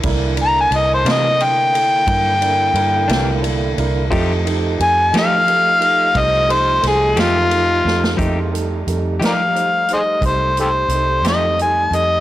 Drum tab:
RD |x-x-x-x-x-x-x-x-x-x-x-x-|x-x-x-x-x-x-x-x-x-x-x---|------------------------|
HH |------------------------|------------------------|x-x-x-x-x-x-x-x-x-x-x-x-|
SD |------o-----------o-----|------o---------o-o---oo|------o-----------o-----|
BD |o-----------o-----------|o-----------o-----------|o-----------o-----------|